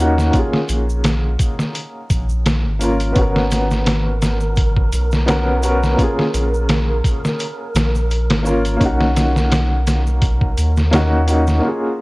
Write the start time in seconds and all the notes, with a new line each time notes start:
Already playing: D#2 A#3
0.00 C#4 D#4 F#4
0.18 snare, shaker
0.30 A#3 C#4, kick, closed hi-hat
0.35 F4, shaker
0.39 G#4
0.53 snare
0.69 A#1, closed hi-hat, shaker
0.89 shaker
1.04 snare, closed hi-hat, shaker
1.39 kick, closed hi-hat, shaker
1.59 snare, shaker
1.75 closed hi-hat, shaker
2.10 A#1, kick, closed hi-hat, shaker
2.29 shaker
2.46 snare, closed hi-hat, shaker
2.65 G#1
2.79 A#3 C#4 F4, closed hi-hat, shaker
2.84 A#4
3.00 closed hi-hat, shaker
3.12 G#1 B3 C#4, kick, closed hi-hat, shaker
3.18 F#4 A#4
3.36 snare
3.51 snare, closed hi-hat, shaker
3.71 snare, shaker
3.86 snare, closed hi-hat, shaker
4.22 snare, closed hi-hat, shaker
4.40 shaker
4.56 kick, closed hi-hat, shaker
4.76 kick
4.92 B1, closed hi-hat, shaker
5.11 snare, shaker
5.26 B3 C#4 F#4, snare, closed hi-hat, shaker
5.30 A#4
5.61 B3 C#4 F#4, closed hi-hat, shaker
5.65 A#4
5.83 snare, shaker
5.94 A#3 C#4
5.98 F4, kick, closed hi-hat, shaker
6.03 G#4
6.19 snare
6.34 A#1, closed hi-hat, shaker
6.54 shaker
6.69 snare, closed hi-hat, shaker
7.04 kick, closed hi-hat, shaker
7.25 snare, shaker
7.39 closed hi-hat, shaker
7.75 A#1, snare, closed hi-hat, shaker
7.95 shaker
8.11 closed hi-hat, shaker
8.29 G#1, snare, closed hi-hat
8.43 A#3 C#4 F4, shaker
8.47 A#4
8.65 closed hi-hat, shaker
8.77 A#3 C#4
8.81 B1 D#4, kick, closed hi-hat, shaker
8.85 F#4
9.01 snare
9.16 snare, closed hi-hat, shaker
9.36 snare, shaker
9.52 snare, closed hi-hat, shaker
9.87 snare, closed hi-hat, shaker
10.07 shaker
10.22 kick, closed hi-hat, shaker
10.41 kick
10.58 D#2, closed hi-hat, shaker
10.76 snare, shaker
10.91 A#3 C#4 D#4 F#4, snare, closed hi-hat, shaker
11.26 A#3 C#4 D#4, closed hi-hat, shaker
11.30 F#4
11.47 snare, shaker
11.59 A#3 C#4
11.65 F4 G#4